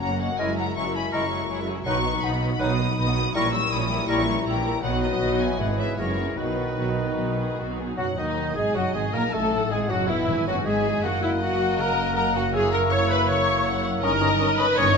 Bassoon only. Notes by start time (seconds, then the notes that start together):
0.39 G#3
1.14 G#3
1.86 F#3
2.60 F#3
3.35 G3
4.09 G3
4.83 F#3
5.58 E3
5.97 E3
6.37 D#3
7.97 F#3
8.18 D#3
8.58 G#3
8.75 F#3
8.94 G#3
9.13 A#3
9.33 A3
9.71 G#3
9.90 F#3
10.09 E3
10.47 F#3
10.65 G#3
11.04 A#3
14.03 C#4
14.21 C#4
14.41 C#4
14.59 C#4
14.78 C#4